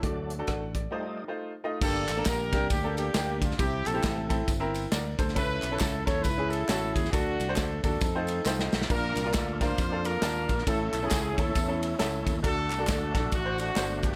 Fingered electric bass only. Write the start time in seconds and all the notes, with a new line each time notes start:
0.03 D2
0.48 A1
1.82 G1
2.09 A1
2.26 A#1
2.53 C2
2.71 D2
3.15 D2
3.59 C2
3.86 A#1
4.04 A1
4.48 G1
4.92 D2
5.19 D2
5.37 C#2
5.63 B1
5.81 C#2
6.07 D#2
6.25 C#2
6.69 A1
6.96 D#2
7.13 D2
7.40 C2
7.57 D2
7.84 D#2
8.01 F2
8.45 C2
8.73 B1
8.90 A#1
9.16 C2
9.35 D2
9.78 F2
10.22 D#2
10.49 A#1
10.67 A1
10.93 B1
11.12 C#2
11.38 D#2
11.56 E2
12.00 C#2
12.26 D#2
12.44 D2
12.71 C2
12.89 D2
13.15 A#1
13.32 A1
13.76 G1